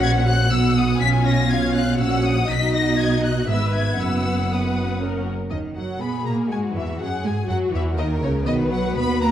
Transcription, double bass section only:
Already playing: A#1
0.52 B1
1.01 B1
2.00 A#1
2.50 B1
3.49 G#1
4.00 F#1
5.52 D#2
5.76 F#2
6.02 B2
6.27 A#2
6.51 G#2
6.75 E2
7.00 F#2
7.24 G#2
7.49 F#2
7.73 E2
7.97 D#2
8.22 C#2
8.47 B1
8.95 D#2

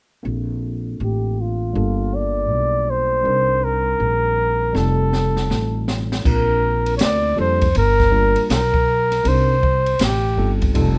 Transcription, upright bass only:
0.25 A#1
1.00 A1
1.75 G1
2.50 B1
3.25 C2
4.00 A#1
4.75 F1
5.50 A1
6.25 A#1
7.00 D2
7.38 F2
7.75 G1
8.36 muted upright bass stroke
8.49 B1
9.25 C2
10.00 A1
10.37 G1
10.76 F1

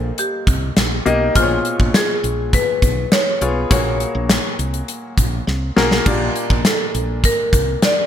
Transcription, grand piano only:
Already playing: A#2 A#3 D#4 G4 D#5
1.06 A#3 D#4 G4 D#5
1.35 A#2 B2 F4 G#4 C5
1.43 C#5
3.41 B3 F4 G#4 C#5
3.70 A#2 A#3 F#4 G#4 C#5
5.76 A#3 F#4 G#4 A#4
6.06 A#2 A#3 D4 F4 D5

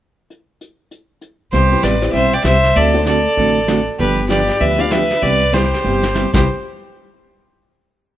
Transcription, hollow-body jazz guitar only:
1.53 C3 G3 B3 E4 G4
1.83 C3 G3 B3 E4 G4
2.13 C3 G3 B3 E4 G4
2.44 C3 G3 B3 E4 G4
2.75 D3 A3 C4 F#4 A4
3.06 D3 A3 C4 F#4 A4
3.37 D3 A3 C4 F#4 A4
3.68 D3 A3 C4 F#4 A4
3.99 D3 F3 B3 D4 G4
4.29 D3 F3 B3 D4 G4
4.60 D3 F3 B3 D4 G4
4.91 D3 F3 B3 D4 G4
5.22 C3 G3 B3 E4 G4
5.53 C3 G3 B3 E4 G4
5.84 C3 G3 B3 E4 G4
6.14 C3 G3 B3 E4 G4
6.33 C3 G3 B3 E4 G4

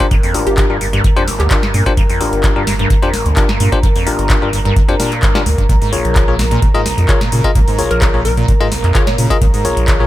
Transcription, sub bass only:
0.11 G1
0.47 G1
1.40 D2
1.74 G2
1.97 G1
2.33 G1
3.26 D2
3.60 G2
3.83 G1
4.19 G1
5.46 D2
5.58 F1
5.69 A#1
6.05 A#1
6.98 F2
7.32 A#2
7.55 A#1
7.91 A#1
8.84 F2
9.18 A#2
9.41 A#1
9.77 A#1

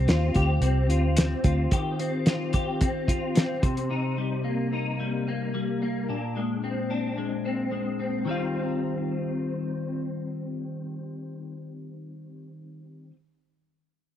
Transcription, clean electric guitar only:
Already playing: D#3 C4 G4
0.08 F4
0.35 G4
0.62 C4
0.89 F4
1.17 C4
1.44 F4
1.72 D#3 G4
1.99 C4
2.26 F4
2.53 G4
2.81 C4
3.08 F4
3.35 C4
3.62 C3
3.90 C3 D#4
4.17 G3
4.44 A#3
4.73 D#4
5.00 G3
5.28 A#3
5.54 G3
5.82 A#3
6.09 A#2 D4
6.36 G#3
6.64 C4
6.90 D4
7.17 G#3
7.45 C4
7.71 G#3
7.99 C4
8.25 D#3 G3 C4
8.30 F4

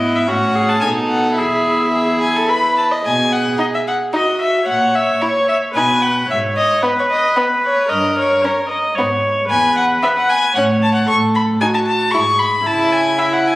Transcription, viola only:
Already playing: B3
0.27 C#4
0.82 D#4
1.36 E4
3.04 G#4
4.13 F#4
4.67 C#5
5.75 B4
6.29 C#5
6.82 B4
7.89 A#4
8.42 C#5
8.69 D#5
8.95 C#5
9.49 B4
10.55 C#5
11.09 A4
11.61 F#4
12.13 G#4
12.66 E4

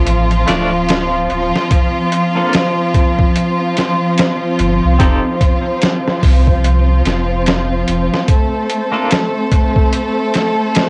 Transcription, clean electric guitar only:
Already playing: A3 D4 F4 A4
0.47 A3 D4 F4 D5
2.35 A#3 D4 F4 A4
4.99 C4 D#4 G4 A4
8.92 A#3 D4 F4 A4

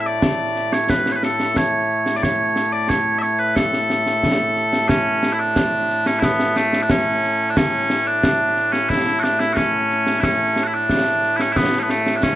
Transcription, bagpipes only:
Already playing: A2 A3
0.06 D5
0.73 C#5
0.90 B4
1.12 B4 C#5
1.23 A4
1.57 C#5
2.16 D5
2.23 C#5
2.72 D5
2.89 C#5
3.19 C#5 E5
3.39 B4
3.56 A4
4.88 C#4
5.33 E4
5.40 D4
6.06 C#4
6.19 E4
6.24 B3
6.56 A3
6.82 D4
6.90 C#4
7.50 D4
7.57 C#4
8.07 D4
8.72 C#4
8.89 E4
9.19 F#4
9.23 D4
9.40 E4
9.53 C#4 F#4
10.21 C#4 E4
10.63 E4 F#4
10.74 D4
11.37 E4
11.41 C#4
11.53 E4
11.57 B3
11.79 B3 C#4
11.90 A3
12.16 D4
12.23 C#4

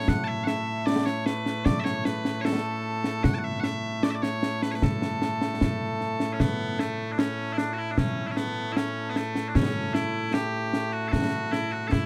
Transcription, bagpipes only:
Already playing: A2 A3
0.09 F#5
0.24 E5 A5
0.44 E5 F#5
0.86 D5
1.06 C#5
1.25 B4
1.65 D5
1.80 E5
1.84 C#5
2.05 B4
2.41 A4 C#5
3.24 F#5
3.34 A5
3.38 F#5
3.44 E5
3.60 E5 F#5
4.03 D5
4.11 E5
4.15 D5
4.23 C#5
4.62 B4
4.71 B4 C#5
4.83 A4
6.33 C#4
6.41 B3
6.79 A3
7.12 D4
7.19 C#4
7.53 E4
7.58 D4
7.73 F#4
7.78 E4
7.91 D4
7.98 C#4
8.27 C#4 E4
8.37 B3
8.72 E4
8.77 C#4
9.10 B3
9.16 A3
9.49 D4
9.55 C#4
9.94 E4
10.33 G4
10.92 F#4
11.08 F#4 A4
11.52 E4
11.72 F#4
11.88 E4 A4

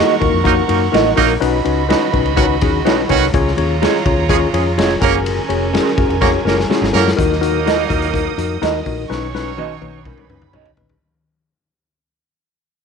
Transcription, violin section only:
Already playing: A#4 F#5 C#6
1.42 F#4 D#5 B5
3.33 F4 C#5 A#5
5.01 C#4 A#4 G#5
7.17 D#5 D#6
9.09 C#5 C#6
10.05 B4 B5

